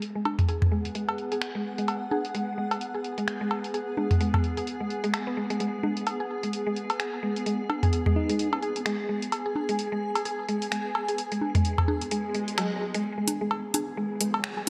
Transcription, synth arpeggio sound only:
0.15 0.20 G#3 medium
0.48 0.54 G#4 medium
0.72 0.78 G#3 medium
0.95 1.01 G#3 medium
1.32 1.36 G#4 medium
1.55 1.59 G#3 medium
1.78 1.82 G#3 medium
2.11 2.17 G#4 medium
2.35 2.40 G#3 medium
2.58 2.64 G#3 medium
2.94 2.99 G#4 medium
3.18 3.22 G#3 medium
3.41 3.45 G#3 medium
3.74 3.80 G#4 medium
3.97 4.03 G#3 medium
4.21 4.26 G#3 medium
4.57 4.62 G#4 medium
4.80 4.85 G#3 medium
5.04 5.08 G#3 loud
5.27 5.33 B3 medium
5.37 5.43 G#3 medium
5.50 5.57 G#3 loud
5.60 5.66 G#3 medium
5.83 5.87 G#3 medium
6.20 6.24 G#4 medium
6.43 6.48 G#3 medium
6.67 6.69 G#3 medium
7.00 7.05 G#4 medium
7.23 7.29 G#3 medium
7.46 7.50 G#3 medium
7.83 7.87 G#4 medium
8.06 8.10 G#3 medium
8.29 8.32 G#3 medium
8.62 8.68 G#4 medium
8.86 8.92 G#3 medium
9.09 9.12 G#3 medium
9.46 9.50 G#4 medium
9.69 9.73 G#3 medium
9.92 9.95 G#3 medium
10.25 10.31 G#4 medium
10.49 10.54 G#3 medium
10.72 10.75 G#3 medium
11.09 11.13 G#4 medium
11.32 11.36 G#3 medium
11.55 11.58 G#3 medium
11.88 11.94 G#4 medium
12.11 12.17 G#3 medium
12.35 12.43 G#3 medium
12.58 12.67 F#3 medium
12.94 13.01 G#3 loud
13.18 13.22 G#3 medium
13.41 13.44 G#3 medium
13.74 13.80 G#4 medium
13.97 14.03 G#3 medium
14.21 14.24 G#3 medium
14.57 14.62 G#4 medium

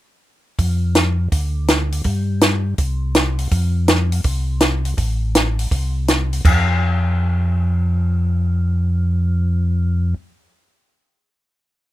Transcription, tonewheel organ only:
0.59 1.28 F2 medium
1.32 2.02 D2 medium
2.05 2.74 G2 medium
2.78 3.48 C2 medium
3.51 4.21 F2 medium
4.24 4.94 C2 medium
4.97 5.67 A1 medium
5.72 6.41 C2 medium
6.45 10.14 F2 medium

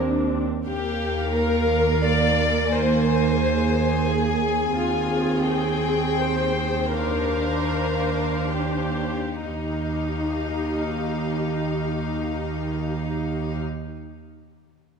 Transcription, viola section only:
0.00 0.43 C4 soft
0.00 0.44 D4 soft
0.67 4.74 A#3 soft
0.67 3.38 A#4 soft
3.43 6.95 G#4 soft
4.79 6.95 C4 soft
6.96 9.14 D4 soft
6.96 9.14 C5 soft
9.44 13.62 D#4 soft
9.44 13.62 G4 soft

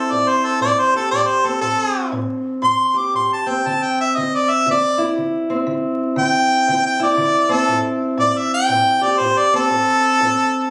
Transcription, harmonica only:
0.00 0.13 A4 medium
0.12 0.30 D5 medium
0.29 0.47 C5 medium
0.45 0.61 A4 medium
0.62 0.80 D5 medium
0.79 0.95 C5 medium
0.96 1.11 A4 medium
1.11 1.29 D5 medium
1.27 1.47 C5 medium
1.46 1.61 A4 medium
1.61 2.11 A4 loud
2.64 2.99 C6 loud
2.97 3.14 D6 medium
3.16 3.31 C6 medium
3.33 3.50 A5 medium
3.48 3.68 G5 medium
3.67 3.84 A5 medium
3.83 3.98 G5 medium
4.00 4.16 E5 medium
4.15 4.36 D#5 medium
4.35 4.52 D5 medium
4.50 4.66 E5 medium
4.71 5.17 D5 medium
6.18 6.83 G5 loud
6.86 7.02 G5 medium
7.03 7.54 D5 medium
7.53 7.78 A4 loud
8.20 8.39 D5 medium
8.38 8.53 E5 medium
8.54 9.04 G5 loud
9.03 9.20 D5 medium
9.19 9.39 C5 medium
9.38 9.53 D5 medium
9.56 10.70 A4 loud

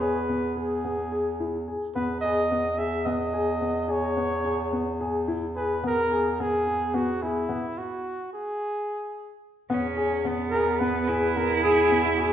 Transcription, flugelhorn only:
0.01 0.56 B4 medium
0.58 1.64 G#4 medium
1.95 2.20 B4 medium
2.21 2.80 D#5 medium
2.78 3.07 E5 medium
3.05 3.92 D#5 medium
3.91 5.01 C#5 medium
5.56 5.82 B4 medium
5.87 6.42 A#4 loud
6.41 6.96 G#4 medium
6.95 7.24 F#4 medium
7.23 7.80 E4 medium
7.78 8.33 F#4 medium
8.33 9.39 G#4 medium
10.50 10.80 A#4 medium
10.79 11.38 B4 medium
11.37 11.63 A#4 medium
11.63 12.02 G#4 medium
12.04 12.11 E4 medium
12.18 12.33 F#4 medium

